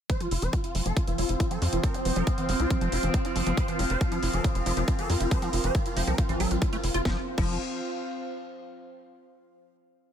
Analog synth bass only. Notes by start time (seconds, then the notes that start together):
0.31 F1
0.42 F1
0.75 F1
0.86 F1
1.07 F1
1.18 F1
1.29 F1
1.62 F2
1.73 F1
2.05 F1
2.16 F1
2.49 F1
2.60 C2
2.81 F1
2.92 F1
3.03 F1
3.36 F#1
3.47 F#1
3.79 F1
3.90 F1
4.23 F1
4.34 F1
4.55 F1
4.66 F1
4.77 F1
5.10 F2
5.20 F1
5.53 F1
5.64 F1
5.97 F1
6.07 C2
6.29 A1
6.40 A1
6.51 A1
6.84 F1
6.94 F1
7.05 F1
7.38 F1